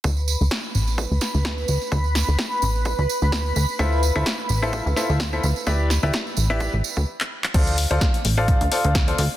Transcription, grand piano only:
X:1
M:4/4
L:1/16
Q:"Swing 16ths" 1/4=128
K:Ddor
V:1 name="Grand piano"
z16 | z16 | [EFAce]2 z [EFAce] z3 [EFAce]2 z [EFAce]2 z [EFAce] z2 | [EGBde]2 z [EGBde] z3 [EGBde]2 z6 z |
[FAcdf]2 z [FAcdf] z3 [FAcdf]2 z [FAcdf]2 z [FAcdf] z2 |]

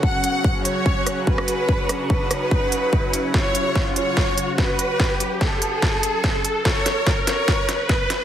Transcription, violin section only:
X:1
M:4/4
L:1/8
Q:"Swing 16ths" 1/4=145
K:F#m
V:1 name="Violin section"
f3 c3 B2- | B2 B6 | c3 c3 B2- | B2 A6 |
c3 c3 B2 |]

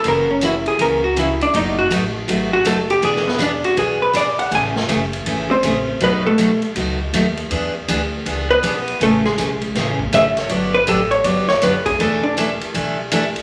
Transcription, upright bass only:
X:1
M:4/4
L:1/8
Q:"Swing" 1/4=161
K:A
V:1 name="Upright bass" clef=bass
F,,,4 C,,4 | F,,,2 A,,,2 G,,,2 F,,,2 | E,,,4 B,,,4 | A,,,2 F,,,2 G,,,2 A,,,2 |
B,,,4 C,,2 ^D,,2 | E,,2 D,,2 C,,2 B,,,2 | A,,,2 B,,,2 A,,,2 G,,,2 | =G,,,2 A,,,2 G,,,2 F,,,2 |
E,,,4 B,,,4 |]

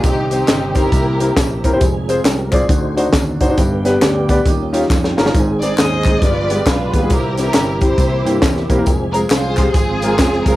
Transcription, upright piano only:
X:1
M:4/4
L:1/16
Q:"Swing" 1/4=136
K:Cm
V:1 name="Upright piano"
z2 [CEGc] z3 [CEGc] z3 [C=EGB] z3 [CEGB] [CEGc] | z2 [CFAc] z3 [CFAd] z3 [DE^Fc] z3 [DEFc] [DEFc] | z2 [=B,DG=B] z3 [B,DGd] z3 [_DEFG] z3 [DEF_B] [DEFB] | z2 [A,CEA] z3 [A,CEA] z3 [A,=B,FG] z3 [A,B,FG] [A,B,FA] |
z2 [G,C=EG] z3 [G,CEG] z3 [B,CEG] z3 [B,CEG] [B,CEB] | z2 [A,CFA] z3 [A,CFG] z3 [A,CFB] z3 [A,CFA] z |]
V:2 name="Upright piano" clef=bass
C,6 z2 C,6 z2 | z8 D,6 z2 | G,,6 z2 E,6 z2 | A,,6 z2 G,,6 z2 |
C,6 z2 C,6 z2 | z16 |]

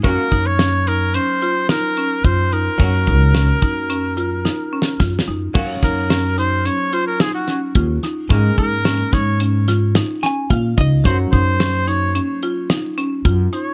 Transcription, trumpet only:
X:1
M:5/4
L:1/16
Q:1/4=109
K:Gblyd
V:1 name="Trumpet"
B3 d3 B2 c4 B4 c2 B2- | B16 z4 | z2 B4 c2 d2 c B A G2 z4 z | B2 B4 d2 z12 |
c2 c4 d2 z8 z2 d2 |]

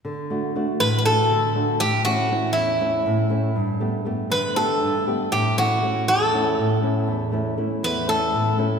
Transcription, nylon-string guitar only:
X:1
M:7/8
L:1/8
Q:1/4=119
K:D
V:1 name="Nylon-string guitar"
D, [A,DF] [A,DF] A,, [A,DF] D, [A,DF] | A,, [A,CE] [A,CE] E,, [A,CE] A,, [A,CE] | G,, [A,B,G] [A,B,G] D, [A,B,G] G,, [A,B,G] | A,, [A,CE] [A,CE] E,, [A,CE] A,, [A,CE] |
E,, [A,CE] [A,CE] E,, [A,CE] A,, [A,CE] |]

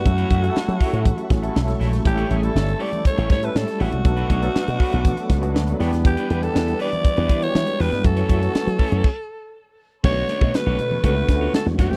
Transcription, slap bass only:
X:1
M:4/4
L:1/16
Q:1/4=120
K:Bm
V:1 name="Slap bass" clef=bass
F,,2 F,,2 z F, z A,,2 z A,,,2 B,,,2 ^A,,,2 | A,,,2 A,,,2 G,,,2 z3 A,,, A,,2 A,, z A,,, =C,, | B,,,2 B,,,2 z B,, z B,,,2 z C,,2 D,,2 E,,2- | E,,2 E,,2 E,,2 z3 E,, E,2 E, z E,, G,, |
F,,2 F,,2 z F, z F,, z8 | B,,,2 z B,, z B,,, B,,2 C,,2 D,,2 z E,, F,, =F,, |]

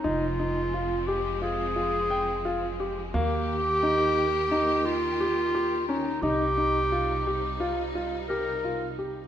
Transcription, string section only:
X:1
M:9/8
L:1/8
Q:3/8=58
K:Fm
V:1 name="String section" clef=bass
[F,A,C]8- [F,A,C] | [E,B,G]8- [E,B,G] | [C,G,E]8- [C,G,E] |]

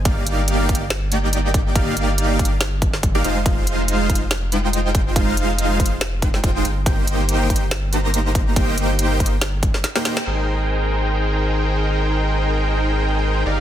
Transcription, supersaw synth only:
X:1
M:4/4
L:1/16
Q:"Swing 16ths" 1/4=141
K:Ablyd
V:1 name="Supersaw synth"
[B,EGdf]2 [B,EGdf]4 [B,EGf] z3 [B,EGdg]6 | [B,EGdf]2 [B,EGdf]4 [B,EGdf] z6 [B,EGdf] [A,EFcf] z | [A,EFcf]2 [A,EFcf]4 [A,EF] z3 [A,EFcg]6 | [A,EFcf]2 [A,EFcf]4 [A,EFcf] z3 [A,EFcg]4 z2 |
[B,EGcg]2 [B,EGcg]4 [Ecg] z3 [B,EGcb]6 | [B,EGcg]2 [B,EGcg]4 [B,EGcg] z6 [B,EGcg] [B,EGcg] z | [EABcg]16- | [EABcg]12- [EABcg]2 [EGBdf]2 |]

